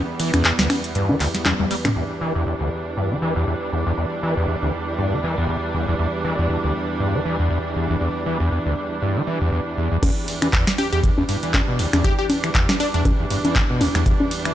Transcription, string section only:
Already playing: E2 E3 G3 B3
1.96 E2 E3 G3 D4
10.03 E2 E3 G3 D4

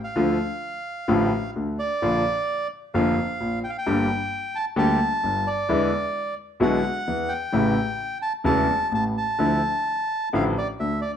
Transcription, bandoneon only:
0.04 F5
1.79 D5
2.94 F5
3.64 G5
3.70 F5
3.78 G5
4.55 A5
4.78 A5
5.47 D5
6.62 F#5
7.29 G5
8.22 A5
8.46 A5
8.94 A5
9.17 A5
10.35 F5
10.58 D5
10.80 E5
11.01 D5

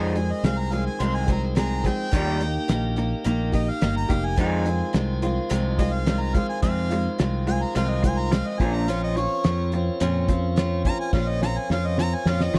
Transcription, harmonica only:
0.02 D#5
0.17 G#5
0.31 D#5
0.45 F5
0.59 A#5
0.73 F5
0.86 G#5
1.01 C6
1.16 G#5
1.31 A#5
1.59 A#5
1.87 G5
3.54 D#5
3.70 F5
3.97 A#5
4.11 F5
4.25 G#5
4.41 G#5
5.79 D#5
5.93 F5
6.21 A#5
6.34 F5
6.49 G#5
6.63 F5
7.48 G#5
7.62 A#5
7.76 F5
7.89 D#5
8.05 G#5
8.19 A#5
8.32 F5
8.47 D#5
8.60 G#5
8.74 A#5
8.90 F5
9.04 D#5
9.17 C#5
10.86 A#5
11.00 G#5
11.14 F5
11.29 D#5
11.42 A#5
11.58 G#5
11.72 F5
11.87 D#5
11.99 A#5
12.15 G#5
12.29 F5
12.43 D#5

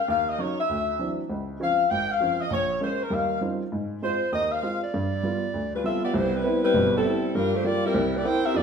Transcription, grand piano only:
0.08 D#2
0.39 F#3 C#4 D#4
0.69 D2
0.99 E3 F#3 C4 D4
1.29 C#2
1.60 F3 C4 C#4
1.91 G#1
2.21 F3 C4 C#4
2.50 A#1
2.81 G#3 A#3 C#4
3.10 D#2 G3
3.41 G3 C4 C#4 D#4 F4
3.72 G#2
4.02 G#3 C4 F4
4.32 D#2
4.63 G#3 C4 F4
4.94 G2
5.23 G3 B3 F4
5.54 D2
5.84 G3 B3 F4
6.14 C2
6.44 B3 C4 E4
6.74 G1 B2
7.04 B3 C4 E4
7.35 G2
7.64 G3 A#3 F4
7.94 C2
8.24 A#3 C4 E4
8.54 F2 F3

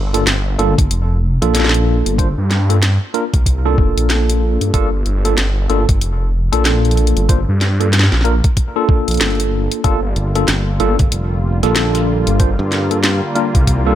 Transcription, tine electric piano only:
0.14 A#3 D4 F4 A4
0.59 A#3 D4 F4 A4
1.42 A#3 D4 F4 A4
2.18 A#3 D4 F4 C5
2.70 A#3 D4 F4 A4
3.14 A#3 D4 F4 A#4
3.65 A#3 D4 F4 A4
4.74 A#3 D4 F4 A4
5.25 A#3 D4 F4 A4
5.69 A#3 D4 F4 A4
6.52 A#3 D4 F4 A4
7.29 A#3 D4 F4 C5
7.80 A#3 D4 F4 A4
8.25 A#3 D4 F4 A#4
8.76 A#3 D4 F4 A4
9.84 A#3 D4 F4 A4
10.36 A#3 D4 F4 A4
10.80 A#3 D4 F4 A4
11.63 A#3 D4 F4 A4
12.40 A#3 D4 F4 C5
12.91 A#3 D4 F4 A4
13.35 A#3 D4 F4 A#4
13.87 A#3 D4 F4 A4

